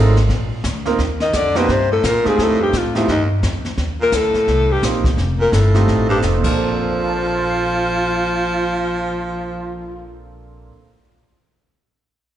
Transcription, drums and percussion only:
0.16 snare soft
0.29 brush sweep soft
0.29 kick soft
0.29 snare soft
0.64 kick soft
0.64 snare medium
0.64 hi-hat pedal medium
0.85 snare soft
0.98 brush sweep soft
0.98 kick soft
0.98 snare soft
1.20 snare soft
1.33 kick soft
1.33 snare medium
1.33 hi-hat pedal medium
1.55 snare soft
1.69 brush sweep soft
1.69 kick soft
1.69 snare soft
2.04 kick soft
2.04 snare medium
2.04 hi-hat pedal medium
2.25 snare soft
2.38 brush sweep soft
2.38 kick soft
2.38 snare soft
2.73 kick soft
2.73 snare medium
2.73 hi-hat pedal medium
2.95 snare soft
3.08 brush sweep soft
3.08 kick soft
3.08 snare soft
3.43 kick soft
3.43 snare medium
3.43 hi-hat pedal soft
3.65 snare soft
3.78 brush sweep soft
3.78 kick soft
3.78 snare soft
4.12 kick soft
4.12 snare medium
4.12 hi-hat pedal medium
4.34 snare soft
4.47 brush sweep medium
4.47 kick soft
4.47 snare soft
4.82 kick soft
4.82 snare medium
4.82 hi-hat pedal medium
5.04 kick medium
5.04 snare soft
5.18 brush sweep soft
5.18 kick soft
5.18 snare soft
5.52 kick soft
5.52 snare medium
5.52 hi-hat pedal medium
5.74 snare soft
5.87 brush sweep soft
5.87 kick soft
5.87 snare soft
6.22 kick soft
6.22 snare medium
6.22 hi-hat pedal soft
6.44 kick soft
6.44 crash medium

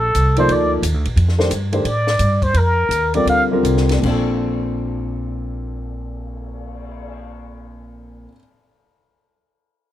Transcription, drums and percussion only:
0.15 hi-hat pedal soft
0.15 ride medium
0.36 ride soft
0.49 ride soft
0.83 hi-hat pedal medium
0.83 ride medium
1.05 ride soft
1.17 ride medium
1.29 snare soft
1.40 snare soft
1.51 hi-hat pedal soft
1.51 ride medium
1.73 ride soft
1.85 ride medium
2.07 snare soft
2.19 hi-hat pedal soft
2.19 ride medium
2.42 kick medium
2.42 ride soft
2.54 ride soft
2.91 hi-hat pedal soft
2.91 ride soft
3.14 ride soft
3.27 ride medium
3.65 hi-hat pedal soft
3.65 ride soft
3.77 snare soft
3.89 snare soft
3.89 ride soft
4.03 kick soft
4.03 crash medium
4.29 cymbal swell soft

